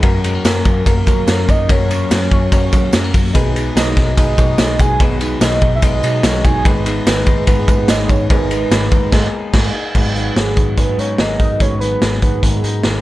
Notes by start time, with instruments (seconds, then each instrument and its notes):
0.03 picked electric bass F#2, clean electric guitar F#2, steel-string acoustic guitar F#3 C#4 F#4 A#4, synth keys C#4 F#4 A#4, kick, ride
0.23 clean electric guitar G#3, steel-string acoustic guitar C#4 F#4 A#4, ride, tambourine
0.35 clean electric guitar A#3
0.44 picked electric bass F#2, steel-string acoustic guitar F#3 C#4 F#4 A#4, synth keys C#4 F#4 A#4, soft synth lead A#4, snare, ride, tambourine
0.65 picked electric bass F#2, clean electric guitar F#3, steel-string acoustic guitar C#4 F#4 A#4, kick, ride, tambourine
0.86 picked electric bass F#2, steel-string acoustic guitar F#3 C#4 F#4 A#4, clean electric guitar A#3, synth keys C#4 F#4 A#4, soft synth lead A#4, kick, ride, tambourine
1.06 clean electric guitar F#3, picked electric bass F#3, synth keys C#4 F#4 A#4, steel-string acoustic guitar C#4 F#4 A#4, kick, ride, tambourine
1.27 picked electric bass F#2, steel-string acoustic guitar F#3 C#4 F#4 A#4, clean electric guitar A#3, synth keys C#4 F#4 A#4, snare, ride, tambourine
1.48 picked electric bass F#2, clean electric guitar F#3, steel-string acoustic guitar C#4 F#4 A#4, soft synth lead D#5, kick, ride, tambourine
1.68 clean electric guitar F#2, picked electric bass F#2, steel-string acoustic guitar F#3 C#4 F#4 A#4, synth keys C#4 F#4 A#4, soft synth lead C#5, kick, ride, tambourine
1.89 clean electric guitar A#3, steel-string acoustic guitar C#4 F#4 A#4, ride, tambourine
2.10 picked electric bass F#2, steel-string acoustic guitar F#3 C#4 F#4 A#4, clean electric guitar B3, synth keys C#4 F#4 A#4, snare, ride, tambourine
2.21 clean electric guitar C#4
2.31 picked electric bass F#2, clean electric guitar F#3, steel-string acoustic guitar C#4 F#4 A#4, soft synth lead C#5, kick, ride
2.51 picked electric bass F#2, steel-string acoustic guitar F#3 C#4 F#4 A#4, clean electric guitar A#3, synth keys C#4 F#4 A#4, soft synth lead C#5, kick, ride, tambourine
2.72 clean electric guitar F#3, picked electric bass F#3, synth keys C#4 F#4 A#4, steel-string acoustic guitar C#4 F#4 A#4, kick, ride, tambourine
2.92 picked electric bass F#2, steel-string acoustic guitar F#3 C#4 F#4 A#4, clean electric guitar G#3, synth keys C#4 F#4 A#4, snare, ride, tambourine
3.04 clean electric guitar A#3
3.13 picked electric bass F#2, clean electric guitar F#3, steel-string acoustic guitar C#4 F#4 A#4, kick, open hi-hat, ride, tambourine
3.33 picked electric bass B1, steel-string acoustic guitar B2 D#3 F#3 B3 D#4 G#4, synth keys D#4 G#4 B4, kick, hi-hat pedal, ride, tambourine
3.54 steel-string acoustic guitar F#3 B3 D#4 G#4, clean electric guitar G#3, ride, tambourine
3.75 picked electric bass B1, steel-string acoustic guitar B2 D#3 F#3 B3 D#4 G#4, synth keys D#4 G#4 B4, soft synth lead D#5, snare, ride, tambourine
3.96 picked electric bass B1, steel-string acoustic guitar F#3 B3 D#4 G#4, kick, snare, ride
4.17 picked electric bass B1, steel-string acoustic guitar F#3 B3 D#4 G#4, clean electric guitar G#3, synth keys D#4 G#4 B4, soft synth lead D#5, kick, ride, tambourine
4.38 picked electric bass B2, steel-string acoustic guitar F#3 B3 D#4 G#4, synth keys D#4 G#4 C#5, kick, ride, tambourine
4.58 picked electric bass B1, steel-string acoustic guitar B2 D#3 F#3 B3 D#4 G#4, clean electric guitar G#3, synth keys D#4 G#4 B4, snare, ride, tambourine
4.79 picked electric bass B1, steel-string acoustic guitar F#3 B3 D#4 G#4, soft synth lead G#5, kick, ride, tambourine
4.99 picked electric bass B1, steel-string acoustic guitar B2 D#3 F#3 B3 D#4 G#4, synth keys D#4 G#4 B4, kick, ride, tambourine
5.20 steel-string acoustic guitar F#3 B3 D#4 G#4, clean electric guitar G#3, ride, tambourine
5.41 picked electric bass B1, steel-string acoustic guitar B2 D#3 F#3 B3 D#4 G#4, synth keys D#4 G#4 B4, soft synth lead D#5, snare, ride, tambourine
5.61 picked electric bass B1, steel-string acoustic guitar F#3 B3 D#4 G#4, kick, ride
5.75 soft synth lead E5
5.82 picked electric bass B1, steel-string acoustic guitar F#3 B3 D#4 G#4, clean electric guitar G#3, synth keys D#4 G#4 B4, soft synth lead D#5, kick, ride, tambourine
6.03 picked electric bass B2, steel-string acoustic guitar F#3 B3 D#4 G#4, synth keys D#4 G#4 B4, ride, tambourine
6.23 picked electric bass B1, steel-string acoustic guitar B2 D#3 F#3 B3 D#4 G#4, clean electric guitar G#3, synth keys D#4 G#4 C#5, snare, ride, tambourine
6.44 picked electric bass B1, steel-string acoustic guitar F#3 B3 D#4 G#4, soft synth lead G#5, kick, ride, tambourine
6.64 picked electric bass G#1, steel-string acoustic guitar G#2 D#3 G#3 B3 D#4 G#4, synth keys D#4 G#4 B4, kick, ride, tambourine
6.86 steel-string acoustic guitar G#3 B3 D#4 G#4, ride, tambourine
7.05 picked electric bass G#1, steel-string acoustic guitar G#2 D#3 G#3 B3 D#4 G#4, synth keys D#4 G#4 B4, soft synth lead B4, snare, ride, tambourine
7.26 picked electric bass G#1, steel-string acoustic guitar G#3 B3 D#4 G#4, kick, ride, tambourine
7.47 picked electric bass G#1, steel-string acoustic guitar G#3 B3 D#4 G#4, synth keys D#4 G#4 B4, soft synth lead B4, kick, ride, tambourine
7.68 picked electric bass G#2, steel-string acoustic guitar G#3 B3 D#4 G#4, synth keys D#4 G#4 B4, kick, ride, tambourine
7.88 picked electric bass G#1, steel-string acoustic guitar G#2 D#3 G#3 B3 D#4 G#4, synth keys D#4 G#4 B4, soft synth lead D#5, snare, ride, tambourine
8.09 picked electric bass G#1, steel-string acoustic guitar G#3 B3 D#4 G#4, soft synth lead C#5, kick, ride, tambourine
8.29 picked electric bass G#1, steel-string acoustic guitar G#2 D#3 G#3 B3 D#4 G#4, synth keys D#4 G#4 A#4, soft synth lead B4, kick, ride, tambourine
8.50 steel-string acoustic guitar G#3 B3 D#4 G#4, ride, tambourine
8.70 picked electric bass G#1, steel-string acoustic guitar G#2 D#3 G#3 B3 D#4 G#4, synth keys D#4 G#4 B4, snare, ride, tambourine
8.91 picked electric bass G#1, steel-string acoustic guitar G#3 B3 D#4 G#4, kick, ride, tambourine
9.12 picked electric bass G#1, steel-string acoustic guitar G#3 B3 D#4 G#4, synth keys D#4 G#4, kick, snare, crash
9.53 picked electric bass G#1, steel-string acoustic guitar G#2 D#3 G#3 B3 D#4 G#4, synth keys D#4 G#4, kick, snare, crash
9.94 picked electric bass G#1, steel-string acoustic guitar G#2 D#3 F#3 B3 D#4 G#4, synth keys F#4 G#4 B4, kick, crash
10.15 steel-string acoustic guitar F#3 B3 D#4 G#4, closed hi-hat
10.35 picked electric bass G#1, steel-string acoustic guitar F#3 D#4 G#4, clean electric guitar B3, synth keys F#4 G#4 B4, soft synth lead G#4, snare, closed hi-hat
10.57 picked electric bass G#1, steel-string acoustic guitar F#3 B3 D#4 G#4, kick, closed hi-hat
10.76 picked electric bass G#1, steel-string acoustic guitar G#2 D#3 F#3 B3 D#4 G#4, synth keys F#4 G#4 B4, soft synth lead B4, kick, closed hi-hat
10.98 picked electric bass G#2, steel-string acoustic guitar F#3 B3 D#4 G#4, soft synth lead C#5, closed hi-hat
11.18 picked electric bass G#1, steel-string acoustic guitar F#3 B3 D#4 G#4, synth keys F#4 G#4 A#4, soft synth lead D#5, snare, closed hi-hat
11.39 picked electric bass G#1, steel-string acoustic guitar F#3 B3 D#4 G#4, kick, closed hi-hat
11.59 picked electric bass G#1, steel-string acoustic guitar G#2 D#3 F#3 B3 D#4 G#4, synth keys F#4 G#4 B4, soft synth lead C#5, kick, closed hi-hat
11.80 steel-string acoustic guitar F#3 B3 D#4 G#4, soft synth lead B4, closed hi-hat
12.01 picked electric bass G#1, steel-string acoustic guitar F#3 D#4 G#4, clean electric guitar B3, synth keys F#4 G#4 B4, snare, closed hi-hat
12.22 picked electric bass G#1, steel-string acoustic guitar F#3 B3 D#4 G#4, soft synth lead B4, kick, closed hi-hat
12.42 picked electric bass G#1, steel-string acoustic guitar G#2 D#3 F#3 B3 D#4 G#4, synth keys F#4 G#4 A#4, soft synth lead G#4, kick, closed hi-hat
12.63 picked electric bass G#2, steel-string acoustic guitar F#3 B3 D#4 G#4, closed hi-hat
12.83 picked electric bass G#1, steel-string acoustic guitar F#3 B3 D#4 G#4, synth keys F#4 G#4 B4, snare, closed hi-hat